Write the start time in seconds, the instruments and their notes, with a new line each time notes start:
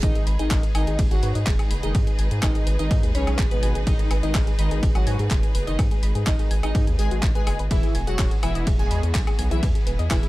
Already playing: string section G#4
0.03 analog synth bass G#1, analog polysynth D#3 D#4, string section G#3 D#4 B4, synth arpeggio sound G#4, synth pluck D#5, kick, closed hi-hat, ride
0.15 synth arpeggio sound G#4, closed hi-hat
0.27 analog synth bass G#1, synth arpeggio sound B5, open hi-hat
0.39 analog synth bass G#1, analog polysynth D#3 D#4, synth arpeggio sound G#4, synth pluck D#5, closed hi-hat
0.51 analog synth bass G#1, synth arpeggio sound G#4, kick, clap, closed hi-hat, ride
0.63 synth arpeggio sound G#4, closed hi-hat
0.75 analog synth bass G#1, analog polysynth D#3 D#4, synth pluck D#5, synth arpeggio sound G#5, open hi-hat, low woodblock
0.87 analog synth bass G#1, synth arpeggio sound G#4, closed hi-hat
0.99 analog synth bass G#1, synth arpeggio sound G#4, kick, closed hi-hat, ride
1.11 analog synth bass G#1, analog polysynth F#3 F#4, synth arpeggio sound G#4, synth pluck F#5, closed hi-hat
1.23 analog synth bass G#2, synth arpeggio sound B4, open hi-hat
1.35 analog synth bass G#2, synth arpeggio sound D#5, closed hi-hat
1.47 analog synth bass F#1, synth arpeggio sound G#4, kick, clap, closed hi-hat, ride
1.59 synth arpeggio sound G#4, closed hi-hat, low woodblock
1.71 analog synth bass F#1, synth arpeggio sound B5, open hi-hat
1.83 analog synth bass F#1, analog polysynth D#3 D#4, synth arpeggio sound G#4, synth pluck D#5, closed hi-hat
1.95 analog synth bass G#2, synth arpeggio sound G#4, kick, closed hi-hat, ride
2.07 synth arpeggio sound G#4, closed hi-hat
2.19 analog synth bass G#1, synth arpeggio sound G#5, open hi-hat
2.31 analog synth bass G#2, synth arpeggio sound G#4, closed hi-hat
2.43 analog synth bass G#1, analog polysynth D#3 D#4, synth arpeggio sound G#4, synth pluck D#5, kick, clap, closed hi-hat, ride, low woodblock
2.55 synth arpeggio sound G#4, closed hi-hat
2.67 analog synth bass G#1, synth arpeggio sound B4, open hi-hat
2.79 analog synth bass G#1, analog polysynth D#3 D#4, synth pluck D#5, synth arpeggio sound D#5, closed hi-hat
2.91 analog synth bass G#2, synth arpeggio sound G#4, kick, closed hi-hat, ride
3.03 analog synth bass D#2, synth arpeggio sound G#4, closed hi-hat
3.15 analog synth bass B1, analog polysynth C#3 C#4, synth pluck C#5, synth arpeggio sound B5, open hi-hat
3.27 analog synth bass B1, synth arpeggio sound G#4, closed hi-hat, low woodblock
3.39 analog synth bass G#1, synth arpeggio sound G#4, kick, clap, closed hi-hat, ride
3.51 analog polysynth B2 B3, synth arpeggio sound G#4, synth pluck B4, closed hi-hat
3.63 analog synth bass G#1, synth arpeggio sound G#5, open hi-hat
3.75 analog synth bass G#1, synth arpeggio sound G#4, closed hi-hat
3.87 analog synth bass G#1, analog polysynth D#3 D#4, synth arpeggio sound G#4, synth pluck D#5, kick, closed hi-hat, ride
3.99 synth arpeggio sound G#4, closed hi-hat
4.11 analog synth bass G#1, synth arpeggio sound B4, open hi-hat, low woodblock
4.23 analog synth bass G#1, analog polysynth D#3 D#4, synth arpeggio sound D#5, synth pluck D#5, closed hi-hat
4.35 analog synth bass G#1, synth arpeggio sound G#4, kick, clap, closed hi-hat, ride
4.47 synth arpeggio sound G#4, closed hi-hat
4.59 analog synth bass G#1, analog polysynth D#3 D#4, synth pluck D#5, synth arpeggio sound B5, open hi-hat
4.71 analog synth bass G#1, synth arpeggio sound G#4, closed hi-hat
4.83 analog synth bass G#1, synth arpeggio sound G#4, kick, closed hi-hat, ride
4.95 analog synth bass G#1, analog polysynth F#3 F#4, synth arpeggio sound G#4, synth pluck F#5, closed hi-hat, low woodblock
5.07 analog synth bass G#2, synth arpeggio sound G#5, open hi-hat
5.19 analog synth bass G#2, synth arpeggio sound G#4, closed hi-hat
5.31 analog synth bass F#1, synth arpeggio sound G#4, kick, clap, closed hi-hat, ride
5.43 synth arpeggio sound G#4, closed hi-hat
5.55 analog synth bass F#1, synth arpeggio sound B4, open hi-hat
5.67 analog synth bass F#1, analog polysynth D#3 D#4, synth arpeggio sound D#5, synth pluck D#5, closed hi-hat
5.79 analog synth bass G#2, synth arpeggio sound G#4, kick, closed hi-hat, ride, low woodblock
5.91 synth arpeggio sound G#4, closed hi-hat
6.03 analog synth bass G#1, synth arpeggio sound B5, open hi-hat
6.15 analog synth bass G#2, synth arpeggio sound G#4, closed hi-hat
6.27 analog synth bass G#1, analog polysynth D#3 D#4, synth arpeggio sound G#4, synth pluck D#5, kick, clap, closed hi-hat, ride
6.39 synth arpeggio sound G#4, closed hi-hat
6.51 analog synth bass G#1, synth arpeggio sound G#5, open hi-hat
6.63 analog synth bass G#1, analog polysynth D#3 D#4, synth arpeggio sound G#4, synth pluck D#5, closed hi-hat, low woodblock
6.75 analog synth bass G#2, synth arpeggio sound G#4, kick, closed hi-hat, ride
6.87 analog synth bass D#2, synth arpeggio sound G#4, closed hi-hat
6.99 analog synth bass G#1, analog polysynth G#3 G#4, synth arpeggio sound G#4, synth pluck G#5, open hi-hat
7.11 analog synth bass G#1, synth arpeggio sound F#4, closed hi-hat
7.23 analog synth bass G#1, synth arpeggio sound D#5, kick, clap, closed hi-hat, ride
7.35 analog polysynth G#3 G#4, synth arpeggio sound B4, synth pluck G#5, closed hi-hat
7.47 analog synth bass F#1, synth arpeggio sound G#4, open hi-hat, low woodblock
7.59 analog synth bass G#1, synth arpeggio sound B4, closed hi-hat
7.71 analog synth bass E1, string section E3 B3 F#4 G#4, analog polysynth E3 E4, synth arpeggio sound G#4, synth pluck E5, kick, closed hi-hat, ride
7.83 synth arpeggio sound G#4, closed hi-hat
7.95 analog synth bass E1, synth arpeggio sound G#5, open hi-hat
8.07 analog synth bass E1, analog polysynth F#3 F#4, synth arpeggio sound G#4, synth pluck F#5, closed hi-hat
8.19 analog synth bass E1, synth arpeggio sound G#4, kick, clap, closed hi-hat, ride
8.31 synth arpeggio sound G#4, closed hi-hat
8.43 analog synth bass E1, analog polysynth E3 E4, synth arpeggio sound B4, synth pluck E5, open hi-hat, low woodblock
8.55 analog synth bass E1, synth arpeggio sound D#5, closed hi-hat
8.67 analog synth bass E1, synth arpeggio sound G#4, kick, closed hi-hat, ride
8.79 analog synth bass E1, analog polysynth G#3 G#4, synth arpeggio sound G#4, synth pluck G#5, closed hi-hat
8.91 analog synth bass E2, synth arpeggio sound B5, open hi-hat
9.03 analog synth bass E2, synth arpeggio sound G#4, closed hi-hat
9.15 analog synth bass B1, synth arpeggio sound G#4, kick, clap, closed hi-hat, ride
9.27 synth arpeggio sound G#4, closed hi-hat, low woodblock
9.39 analog synth bass B1, synth arpeggio sound G#5, open hi-hat
9.51 analog synth bass B1, analog polysynth E3 E4, synth arpeggio sound G#4, synth pluck E5, closed hi-hat
9.63 analog synth bass E2, string section E4, synth arpeggio sound G#4, kick, closed hi-hat, ride
9.75 synth arpeggio sound G#4, closed hi-hat
9.87 analog synth bass E1, synth arpeggio sound B4, open hi-hat
9.99 analog synth bass E2, synth arpeggio sound D#5, closed hi-hat
10.11 analog synth bass E1, analog polysynth E3 E4, synth arpeggio sound G#4, synth pluck E5, kick, clap, closed hi-hat, ride, low woodblock
10.23 synth arpeggio sound G#4, closed hi-hat